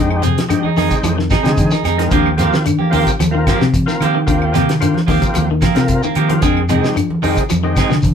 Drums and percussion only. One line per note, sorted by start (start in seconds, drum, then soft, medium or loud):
0.11 claves medium
0.22 closed hi-hat medium
0.22 high conga medium
0.22 shekere medium
0.38 snare medium
0.38 closed hi-hat medium
0.38 shekere soft
0.50 snare soft
0.50 closed hi-hat medium
0.50 high conga soft
0.50 claves medium
0.50 shekere medium
0.64 high conga medium
0.77 snare soft
0.77 open hi-hat medium
0.77 low conga medium
0.77 shekere soft
0.91 kick medium
0.91 closed hi-hat soft
0.91 shekere medium
1.04 closed hi-hat medium
1.04 high conga loud
1.04 claves medium
1.04 shekere medium
1.19 snare soft
1.30 kick medium
1.30 snare medium
1.30 closed hi-hat soft
1.30 high conga soft
1.30 low conga medium
1.30 claves medium
1.30 shekere medium
1.44 snare medium
1.44 closed hi-hat soft
1.44 shekere soft
1.57 kick medium
1.57 closed hi-hat medium
1.57 high conga medium
1.57 shekere medium
1.71 snare soft
1.71 shekere medium
1.83 snare soft
1.83 closed hi-hat soft
1.83 low conga medium
1.83 claves medium
1.83 shekere soft
1.99 snare soft
1.99 closed hi-hat medium
2.11 kick medium
2.11 closed hi-hat medium
2.11 high conga soft
2.11 low conga medium
2.11 shekere medium
2.26 claves medium
2.38 snare soft
2.38 closed hi-hat medium
2.38 high conga medium
2.38 shekere medium
2.53 snare medium
2.53 shekere soft
2.65 closed hi-hat medium
2.65 high conga soft
2.65 claves medium
2.65 shekere medium
2.79 high conga medium
2.93 open hi-hat medium
2.93 high conga medium
2.93 low conga medium
2.93 shekere soft
3.07 kick medium
3.07 closed hi-hat soft
3.07 shekere medium
3.20 closed hi-hat medium
3.20 high conga loud
3.20 claves medium
3.20 shekere medium
3.47 kick medium
3.47 snare medium
3.47 closed hi-hat medium
3.47 high conga soft
3.47 claves medium
3.47 shekere medium
3.61 snare medium
3.61 shekere soft
3.74 kick medium
3.74 closed hi-hat medium
3.74 high conga medium
3.74 shekere medium
3.88 snare soft
3.88 shekere medium
4.00 closed hi-hat medium
4.00 low conga medium
4.00 claves medium
4.00 shekere soft
4.26 kick medium
4.26 closed hi-hat medium
4.26 high conga soft
4.26 shekere medium
4.42 claves medium
4.54 snare soft
4.54 closed hi-hat medium
4.54 high conga medium
4.54 shekere medium
4.69 snare medium
4.69 closed hi-hat medium
4.69 shekere soft
4.80 closed hi-hat medium
4.80 high conga soft
4.80 claves medium
4.80 shekere medium
4.94 snare soft
4.94 high conga medium
5.08 kick medium
5.08 open hi-hat medium
5.08 high conga medium
5.08 low conga medium
5.08 shekere soft
5.22 kick medium
5.22 closed hi-hat soft
5.22 shekere medium
5.34 closed hi-hat medium
5.34 high conga medium
5.34 claves medium
5.34 shekere medium
5.61 kick medium
5.61 snare medium
5.61 closed hi-hat soft
5.61 high conga medium
5.61 claves medium
5.61 shekere medium
5.75 snare medium
5.75 closed hi-hat soft
5.75 high conga medium
5.75 shekere soft
5.88 kick medium
5.88 closed hi-hat medium
5.88 low conga medium
5.88 shekere medium
6.03 low conga medium
6.03 shekere medium
6.15 closed hi-hat soft
6.15 low conga medium
6.15 claves medium
6.15 shekere soft
6.29 closed hi-hat soft
6.29 low conga medium
6.42 kick medium
6.42 closed hi-hat medium
6.42 high conga soft
6.42 low conga medium
6.42 shekere medium
6.57 claves medium
6.69 closed hi-hat soft
6.69 high conga medium
6.69 shekere medium
6.83 snare medium
6.83 shekere soft
6.96 closed hi-hat medium
6.96 high conga soft
6.96 claves medium
6.96 shekere medium
7.10 high conga medium
7.22 open hi-hat medium
7.22 low conga medium
7.22 shekere soft
7.37 kick medium
7.37 closed hi-hat soft
7.37 shekere medium
7.50 closed hi-hat medium
7.50 high conga medium
7.50 claves medium
7.50 shekere medium
7.76 kick medium
7.76 snare medium
7.76 closed hi-hat medium
7.76 high conga soft
7.76 claves medium
7.76 shekere medium
7.90 snare medium
7.90 shekere soft
8.02 kick medium
8.02 closed hi-hat medium
8.02 high conga medium
8.02 shekere medium